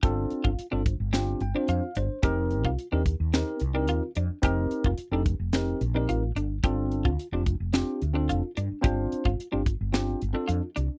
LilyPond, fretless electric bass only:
\new Staff \with { instrumentName = "Fretless electric bass" } { \clef bass \time 4/4 \key g \minor \tempo 4 = 109 g,,8 r16 g,,16 r16 g,,8 g,,8. g,,16 r16 f,16 r16 g,,16 r16 | f,,8. c,16 r16 ees,8 ees,8 r16 c,8 ees,16 r16 f,16 r16 | f,,8 r16 f,,16 r16 f,,8 f,,8. bes,,8 a,,8 g,,8 | g,,8. d,16 r16 f,,8 f,,8 r16 d,8 f,,16 r16 g,16 r16 |
g,,8 r16 g,,16 r16 g,,8 g,,8. g,,16 r16 f,16 r16 c,16 r16 | }